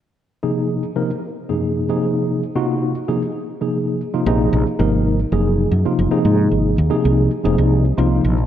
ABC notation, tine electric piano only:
X:1
M:4/4
L:1/16
Q:1/4=113
K:Abmix
V:1 name="Tine electric piano"
z3 [C,F,B,EA]3 z [C,F,B,EB] z3 [G,,C,F,B,EA]3 [C,F,B,EA]2- | [C,F,B,EA]2 z [C,B,EFG]3 z [C,F,B,EA] z3 [C,F,B,EA]3 z [C,F,B,EF] | [C,F,B,EA]3 z [C,F,B,EB]3 z [C,F,B,EA]3 z [C,F,B,EF]2 [C,F,B,EA]2- | [C,F,B,EA]3 z [C,F,B,EA]3 z [C,F,B,EA]3 z [C,F,B,EF]3 z |]